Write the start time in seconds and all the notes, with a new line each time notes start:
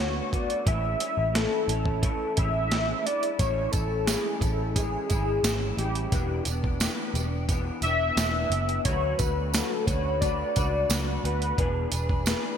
Already playing: D2 D3 C#5
0.00 A3 B3 F#4
0.31 A3 B3 F#4 D5, kick, closed hi-hat
0.50 closed hi-hat
0.65 A1 A2 E3 G#3 C#4 E4 E5, kick, closed hi-hat
0.99 G#3 C#4 E4, closed hi-hat
1.18 A1
1.33 A2 E3 C#4 E4 A4, snare, closed hi-hat
1.68 A1 C#4 E4, closed hi-hat
1.86 kick
2.02 E3 C#4 E4, kick, closed hi-hat
2.36 A1 G#3 C#4 E4 E5, kick, closed hi-hat
2.70 A2 E3 G#3 C#4 E4, snare, closed hi-hat
3.05 G#3 E4 D5, closed hi-hat
3.23 closed hi-hat
3.39 A1 A2 E3 G#3 C#4 E4 C#5, kick, closed hi-hat, tambourine
3.71 A1 C#4 E4 A4, kick, closed hi-hat, tambourine
4.06 A2 E3 G#3 C#4 E4 G#4, snare, closed hi-hat, tambourine
4.40 A1 C#4 E4 A4, kick, closed hi-hat, tambourine
4.75 E3 G#3 C#4 E4 G#4, kick, closed hi-hat, tambourine
5.09 G#1 G#3 C#4 E4, kick, closed hi-hat, tambourine
5.43 G#1 E3 G#3 C#4 E4, snare, closed hi-hat, tambourine
5.77 A1 G#3 C#4 E4 G4, closed hi-hat, tambourine
5.95 closed hi-hat
6.12 E1 E3 B3 D4 G4, kick, closed hi-hat, tambourine
6.45 E1 D4 G4, closed hi-hat, tambourine
6.49 B3
6.64 kick
6.80 E3 B3 D4 G4, snare, closed hi-hat, tambourine
7.14 E1 D4 G4, closed hi-hat, tambourine
7.18 B3
7.48 E3 B3 D4 G4, kick, closed hi-hat, tambourine
7.82 E1 B3 D4 G4 E5, closed hi-hat, tambourine
8.16 E1 E3 B3 D4 G4, snare, closed hi-hat, tambourine
8.50 F#1 B3 D4 G4, closed hi-hat
8.69 closed hi-hat
8.85 D2 D3 F#3 A3 D4 F#4 B4 C#5, kick, closed hi-hat, tambourine
9.18 D2 D4 F#4 B4, kick, closed hi-hat, tambourine
9.22 A3
9.53 D3 F#3 A3 D4 F#4 A4 B4, snare, closed hi-hat, tambourine
9.86 D2 D4 F#4 B4 C#5, kick, closed hi-hat, tambourine
9.90 A3
10.21 A3 D4 F#4 B4 D5, kick, closed hi-hat, tambourine
10.56 C#2 A3 D4 F#4 B4, kick, closed hi-hat, tambourine
10.89 C#2 F#3 A3 D4 F#4 B4, snare, closed hi-hat, tambourine
11.23 D2 A3 D4 F#4 B4, closed hi-hat
11.42 closed hi-hat
11.57 E1 E3 B3 D4 G#4 B4, kick, closed hi-hat
11.90 E1 D4 G#4 B4, closed hi-hat, tambourine
12.09 kick
12.25 E3 B3 D4 G#4 B4, snare, closed hi-hat, tambourine